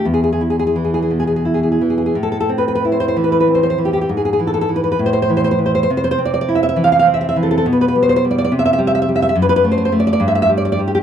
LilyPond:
\new Staff \with { instrumentName = "Nylon-string guitar" } { \time 6/8 \key a \minor \tempo 4. = 67 << { r32 gis'32 gis'32 gis'32 r32 gis'32 gis'32 gis'32 r32 gis'32 gis'32 gis'32 r32 gis'32 gis'32 gis'32 r32 gis'32 gis'32 gis'32 r32 gis'32 gis'32 gis'32 | r32 a'32 a'32 a'32 r32 b'32 b'32 b'32 r32 c''32 c''32 c''32 r32 b'32 b'32 b'32 r32 c''32 c''32 c''32 r32 g'32 g'32 g'32 | r32 gis'32 gis'32 gis'32 r32 a'32 a'32 a'32 r32 b'32 b'32 b'32 r32 c''32 c''32 c''32 r32 c''32 c''32 c''32 r32 c''32 c''32 c''32 | r32 c''32 c''32 c''32 r32 d''32 d''32 d''32 r32 e''32 e''32 e''32 r32 f''32 f''32 f''32 r32 e''32 e''32 e''32 r32 a'32 a'32 a'32 |
r32 b'32 b'32 b'32 r32 c''32 c''32 c''32 r32 d''32 d''32 d''32 r32 e''32 e''32 e''32 r32 e''32 e''32 e''32 r32 e''32 e''32 e''32 | r32 b'32 b'32 b'32 r32 c''32 c''32 c''32 r32 d''32 d''32 d''32 r32 e''32 e''32 e''32 r32 d''32 d''32 d''32 r32 g'32 g'32 r32 | } \\ { e,8 e'8 e8 b,8 e'8 e8 | a,8 c'8 e'8 e8 c'8 e8 | gis,8 e8 e8 a,8 e8 e8 | c8 c'8 e'8 e8 c'8 e8 |
b,8 g8 g8 c8 g8 g8 | fis,8 a8 a8 g,8 g8 g8 | } >> }